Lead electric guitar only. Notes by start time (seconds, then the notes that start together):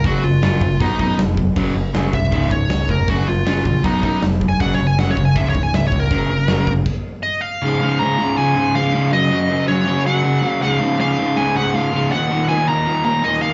0.06 F#4
0.25 F4
0.81 D#4
1.00 D#4
2.14 E5
2.52 C#5
2.91 A#4
3.10 F#4
3.29 F4
3.85 D#4
4.04 D#4
4.49 G#5
4.61 F#5
4.74 C#5
4.87 G#5
4.99 F#5
5.11 C#5
5.25 G#5
5.36 E5
5.50 C#5
5.63 G#5
5.75 E5
5.87 C#5
6.00 A#4
7.23 D#5
7.41 F5
7.99 A#5
8.37 G#5
8.75 F5
9.13 D#5
9.68 C#5
10.07 F#5
10.48 F5
10.62 F5
11.01 F5
11.37 G#5
11.57 F#5
11.75 F5
12.12 F#5
12.49 G#5
12.68 A#5
13.05 A#5
13.24 D#5
13.42 F5